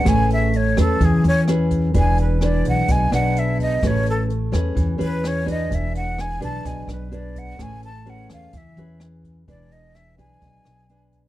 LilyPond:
<<
  \new Staff \with { instrumentName = "Flute" } { \time 4/4 \key a \major \tempo 4 = 127 gis''8 e''8 cis''8 a'8 gis'8 cis''8 r4 | gis''8 b'8 d''8 fis''8 gis''8 fis''8 e''8 dis''8 | cis''8 a'8 r4. b'8 cis''8 dis''8 | e''8 fis''8 gis''8 a''8 gis''8 b'8 d''8 fis''8 |
gis''8 a''8 fis''8 f''8 e''4 r4 | d''8 dis''8 e''8 gis''2~ gis''16 r16 | }
  \new Staff \with { instrumentName = "Nylon-string guitar" } { \time 4/4 \key a \major << { <cis' gis' b'>4 r8 <cis' gis' b'>4. <cis' gis' b'>4 | <d' gis' b'>4 <d' gis' b'>4. <d' gis' b'>4. | <cis' gis' b'>4 r8 <cis' gis' b'>4 <cis' gis' b'>4 <d' gis' b'>8~ | <d' gis' b'>4. <d' gis' b'>4. <d' gis' b'>4 |
<cis' gis' b'>8 r8 <cis' gis' b'>4 r8 <cis' gis' b'>4. | <d' gis' b'>4. <d' gis' b'>4. <d' gis' b'>4 | } \\ { a2 e2 | e2 b,2 | a2 e2 | e2 b,2 |
a2 e2 | e2 b,2 | } >> }
  \new Staff \with { instrumentName = "Upright bass" } { \clef bass \time 4/4 \key a \major a,,4. e,8 e,8 e,4. | e,,4. b,,8 b,,8 b,,4. | a,,4. e,8 e,8 e,4. | e,,4. b,,8 b,,8 b,,4. |
a,,4. e,8 e,8 e,4. | e,,4. b,,8 b,,8 b,,4. | }
  \new DrumStaff \with { instrumentName = "Drums" } \drummode { \time 4/4 <hh bd ss>8 hh8 hh8 <hh bd ss>8 <hh bd>8 hh8 <hh ss>8 <hh bd>8 | <hh bd>8 hh8 <hh ss>8 <hh bd>8 <hh bd>8 <hh ss>8 hh8 <hh bd>8 | <hh bd ss>8 hh8 hh8 <hh bd ss>8 <hh bd>8 hh8 <hh ss>8 <hh bd>8 | <hh bd>8 hh8 <hh ss>8 <hh bd>8 <hh bd>8 <hh ss>8 hh8 <hh bd>8 |
<hh bd ss>8 hh8 hh8 <hh bd ss>8 <hh bd>8 hh8 <hh ss>8 <hh bd>8 | <hh bd>8 hh8 <hh ss>8 <hh bd>8 <hh bd>8 <hh ss>8 hh8 <hh bd>8 | }
>>